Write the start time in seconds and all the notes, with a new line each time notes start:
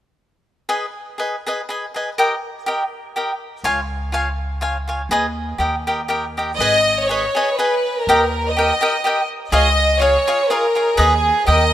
0.69 G#4 B4 D#5 G#5
1.18 G#4 B4 D#5 G#5
1.46 G#4 B4 D#5 G#5
1.69 G#4 B4 D#5 G#5
1.94 G#4 B4 D#5 G#5
2.18 G4 A#4 D#5 G5
2.66 G4 A#4 D#5 G5
3.16 G4 A#4 D#5 G5
3.64 C#2 F4 C#5 F5 G#5
4.12 F4 C#5 F5 G#5
4.61 F4 C#5 F5 G#5
4.88 F4 C#5 F5 G#5
5.09 D#2 G#4 B4 D#5 G#5
5.58 D#2 G4 A#4 D#5 G5
5.87 G4 A#4 D#5 G5
6.08 G4 A#4 D#5 G5
6.37 G4 A#4 D#5 G5
6.57 G#1 G#4 B4 D#5
6.61 D#5 G#5
7.05 G#4 C#5
7.10 B4 D#5 G#5
7.35 G#4 B4 D#5 G#5
7.53 B4
7.59 G#4 B4 D#5 G#5
8.02 A#4
8.07 D#2 G4 A#4 D#5 G5
8.50 D#5
8.56 G4 A#4 D#5 G5
8.81 G4 A#4 D#5 G5
9.04 G4 A#4 D#5 G5
9.52 C#2 F4 G#4 C#5 D#5 F5
10.00 F4 G#4 C#5 F5
10.27 F4 G#4 C#5 F5
10.49 F4 G#4 A#4 C#5 F5
10.75 F4 G#4 C#5 F5
10.97 D#2 D#4 G#4 B4 D#5
11.47 D#2 G4 A#4 D#5 G5